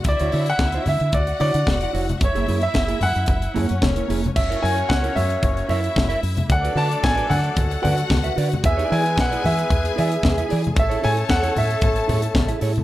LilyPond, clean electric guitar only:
\new Staff \with { instrumentName = "Clean electric guitar" } { \time 4/4 \key fis \minor \tempo 4 = 112 r16 <e' fis' cis''>16 <e' fis' cis''>16 r8 <e' fis' cis''>16 r4 <e' fis' cis''>16 r8 <e' fis' d''>16 <e' fis' cis''>16 r16 | r16 <ais e' gis'>16 <ais e' gis'>16 r8 <ais e' gis'>16 r4 <ais e' gis'>16 r8 <ais e' ais'>16 <ais e' gis'>16 r16 | r16 <e' ais' cis''>16 <e' ais' cis''>16 r8 <e' ais' cis''>16 r4 <e' ais' cis''>16 r8 <e' ais' e''>16 r8 | r16 <fis' b' d''>16 <fis' b' d''>16 r8 <fis' b' d''>16 r4 <fis' b' d''>16 r8 <fis' b' e''>16 <fis' b' d''>16 r16 |
r16 <e' gis' d''>16 <e' gis' d''>16 r8 <e' gis' d''>16 r4 <e' gis' d''>16 r8 <e' gis' e''>16 <e' gis' d''>16 r16 | r16 <e' gis' cis''>16 <e' gis' cis''>16 r8 <e' gis' cis''>16 r4 <e' gis' cis''>16 r8 <e' gis' e''>16 <e' gis' cis''>16 r16 | }